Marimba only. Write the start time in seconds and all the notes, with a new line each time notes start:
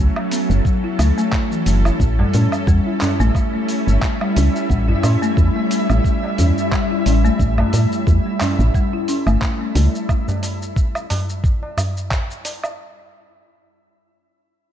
0.17 F#3
0.32 B3
0.66 F#3
0.84 E4
0.99 A3
1.18 A3
1.52 E3
1.85 E4
2.19 G3
2.34 C#4
2.68 G3
2.87 E4
3.02 C#4
3.20 A3
3.54 A3
4.21 G3
4.36 C#4
4.70 G3
4.89 E4
5.04 C#4
5.22 A3
5.56 A3
6.23 G3
6.39 C#4
6.72 G3
6.91 E4
7.06 C#4
7.25 A3
7.58 A3
8.26 G3
8.41 C#4
8.75 G3
8.93 E4
9.09 C#4
9.27 A3
9.61 A3